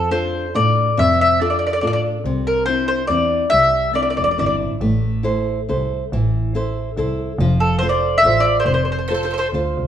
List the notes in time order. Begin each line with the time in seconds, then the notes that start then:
Already playing: F2 F3 A4
0.11 D4 F4 A4 C5
0.55 A2 D4 F4 A4 D5
0.97 F2 C3 E5
1.21 E5
1.40 D4 F4 A4 D5
1.50 D5
1.59 D5
1.67 D5
1.73 D5
1.81 A2 D4 F4 A4 D5
1.87 D5
1.93 D5
2.24 C2 C3
2.47 A#4
2.66 C4 D4 E4 C5
2.88 C5
3.07 E2 C4 D4 E4 D5
3.50 C2 G3 E5
3.93 C4 D4 E4 D5
4.03 D5
4.10 D5
4.17 E1 D5
4.24 D5
4.31 D5
4.38 G1 C4 D4 E4 D5
4.46 D5
4.61 A1
4.81 A1 A3
5.23 E4 A4 C5
5.69 C2 E4 A4 C5
6.12 A1 E3
6.55 E4 A4 C5
6.97 C2 E4 A4 C5
7.38 F1 F3
7.60 A4
7.79 F4 C5
7.83 A4 C5
7.89 D5
8.18 E5
8.23 A1 F4 A4 C5
8.40 D5
8.60 C5
8.65 F1 C3 C5
8.74 C5
8.85 C5
8.92 C5
8.99 C5
9.08 F4 A4 C5
9.14 A4 C5
9.23 A4 C5
9.31 A4 C5
9.38 A4 C5
9.52 D2 F4 A4 C5
9.77 C2